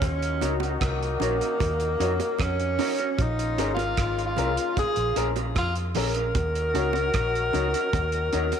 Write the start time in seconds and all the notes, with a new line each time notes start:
0.02 D#2 A#2 C#4 D#4 F#4, kick, closed hi-hat, high bongo
0.22 closed hi-hat
0.41 C#2 C#4 D#4 F#4 A#4 C#5, closed hi-hat, high bongo
0.60 C#4 F#4 A#4, closed hi-hat, high bongo
0.81 C2 A#3, kick, cross-stick, closed hi-hat
1.03 closed hi-hat
1.20 A#1 C#4 D#4 F#4 A#4 C#5, closed hi-hat, low bongo
1.41 C#4 F#4 A#4, closed hi-hat
1.60 D#2, kick, closed hi-hat, high bongo
1.80 closed hi-hat
2.00 F2 C#4 D#4 F#4 A#4 C#5, closed hi-hat
2.20 closed hi-hat, high bongo
2.39 F2 C#4, kick, cross-stick, closed hi-hat, high bongo
2.60 closed hi-hat
2.79 C#4 D#4 F#4 A#4 C#5, open hi-hat, low bongo
2.99 C#4 F#4 A#4, closed hi-hat
3.18 A#1 C#3 A#3 D#4 F4, kick, closed hi-hat, high bongo
3.39 closed hi-hat
3.58 G#1 C#4 G#4 A#4, closed hi-hat, high bongo
3.74 F4 A#4, high bongo
3.78 C#4 G#4, closed hi-hat
3.97 G#1, kick, cross-stick, closed hi-hat
4.19 closed hi-hat
4.27 F4
4.37 C2 C#4 G#4 A#4, closed hi-hat, low bongo
4.57 closed hi-hat
4.77 G#4, kick, closed hi-hat, high bongo
4.96 A#1, closed hi-hat
5.16 A#1 C#4 G#4 A#4, closed hi-hat
5.36 C#4 G#4 A#4, closed hi-hat, high bongo
5.55 F2 F4, kick, cross-stick, closed hi-hat, high bongo
5.75 closed hi-hat
5.95 A#1 C#4 G#4 A#4, open hi-hat, low bongo
6.14 C#4 G#4 A#4, closed hi-hat
6.35 D#2 D#3 C#4 F#4, kick, closed hi-hat, high bongo
6.55 closed hi-hat
6.74 C#2 C#4 D#4 F#4 A#4 C#5, closed hi-hat, high bongo
6.93 C#4 F#4 A#4, closed hi-hat, high bongo
7.14 A#1, kick, cross-stick, closed hi-hat
7.35 closed hi-hat
7.53 C#2 C#4 D#4 F#4 A#4 C#5, closed hi-hat, low bongo
7.73 C#4 F#4 A#4, closed hi-hat
7.93 D#2, kick, closed hi-hat, high bongo
8.12 closed hi-hat
8.32 D#2 C#4 D#4 F#4 A#4 C#5, closed hi-hat
8.52 closed hi-hat, high bongo